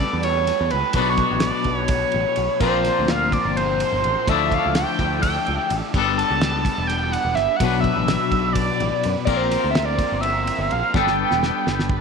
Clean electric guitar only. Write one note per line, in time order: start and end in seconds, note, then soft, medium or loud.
0.00 0.94 G3 medium
0.00 0.94 B3 medium
0.00 0.95 D4 medium
0.00 0.95 A4 loud
0.95 2.60 B2 medium
0.95 2.60 F#3 medium
0.95 2.61 B3 medium
0.95 2.61 D4 medium
0.95 2.62 F#4 loud
2.60 4.26 A#2 medium
2.60 4.27 F3 medium
2.60 4.27 A#3 medium
2.60 4.27 C4 medium
2.60 4.28 F4 medium
4.28 5.94 D3 medium
4.28 5.94 F3 medium
4.28 5.94 A3 medium
4.28 5.96 D4 medium
4.28 5.95 E4 loud
5.95 7.60 G3 medium
5.95 7.61 B3 medium
5.95 7.61 D4 medium
5.95 7.62 A4 medium
7.61 9.27 B2 medium
7.61 9.27 F#3 medium
7.61 9.26 B3 medium
7.61 9.27 D4 medium
7.61 9.28 F#4 medium
7.61 9.28 B4 medium
9.26 10.93 A#3 medium
9.26 10.93 C4 medium
9.26 10.94 F4 medium
9.26 10.94 A#4 medium
10.94 12.01 G3 medium
10.94 12.01 B3 medium
10.94 12.01 D4 medium
10.94 12.01 A4 loud